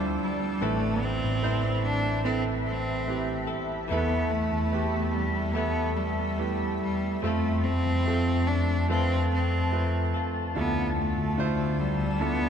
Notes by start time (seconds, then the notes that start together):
Already playing: D2 D3 F3 G3 A3 D4 E4 F4 A4 B4 C5 D5 A5 E6
0.22 G3
0.61 A1 A2 E3 A3 C4 E4 A4 B4 E5 B5
1.03 C4
1.23 A1
1.43 A1 C4 E4 A4 B4 C5
1.84 D4
2.24 A2 E3 C4 E4 A4 B4
2.67 C4
3.07 C4 E4 G4 B4
3.47 B3 C4 E4 A4
3.88 E2 E3 A3 B3 E4 A4 E5
3.92 E3 E4 A4 B4
4.31 A3
4.51 E2
4.72 E2 A3 B3 E4 G4
5.13 G3
5.54 E3 A3 B3 E4 A4
5.58 B4
5.95 G3
6.38 A3 B3 E4 G4
6.80 G3
7.21 F2 F3 A3 C4 F4 A4 A5
7.26 F4 A4
7.63 C4
7.86 F2
8.06 F2 A3 C4 F4 A4
8.47 D4
8.88 F3 A3 C4 F4 A4 B4
9.33 C4
9.72 A3 C4 F4 B4
10.14 C4 F4 A4
10.55 D2 D3 B3 D4 E4 F4 A4 D5 E6
10.98 A3
11.17 D2
11.37 D2 D4 E4 F4 C5
11.79 G3
12.19 B3 D4 E4 F4 A4